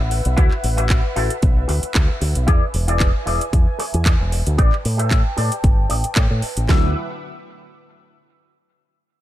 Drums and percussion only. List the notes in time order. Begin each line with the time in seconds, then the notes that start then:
0.11 open hi-hat
0.25 closed hi-hat
0.38 kick, closed hi-hat
0.51 clap
0.64 open hi-hat
0.78 closed hi-hat
0.89 kick, clap, closed hi-hat
1.16 open hi-hat
1.30 closed hi-hat
1.42 kick, closed hi-hat
1.69 open hi-hat
1.83 closed hi-hat
1.95 kick, clap, closed hi-hat
2.21 open hi-hat
2.35 closed hi-hat
2.48 kick, closed hi-hat
2.74 open hi-hat
2.88 closed hi-hat
3.00 kick, clap, closed hi-hat
3.27 open hi-hat
3.41 closed hi-hat
3.53 kick, closed hi-hat
3.80 open hi-hat
3.94 closed hi-hat
4.06 kick, clap, closed hi-hat
4.32 open hi-hat
4.47 closed hi-hat
4.59 kick, closed hi-hat
4.73 clap
4.85 open hi-hat
4.99 closed hi-hat
5.11 kick, clap, closed hi-hat
5.38 open hi-hat
5.52 closed hi-hat
5.64 kick, closed hi-hat
5.90 open hi-hat
6.04 closed hi-hat
6.15 kick, clap, closed hi-hat
6.42 open hi-hat
6.57 closed hi-hat
6.69 kick, snare, clap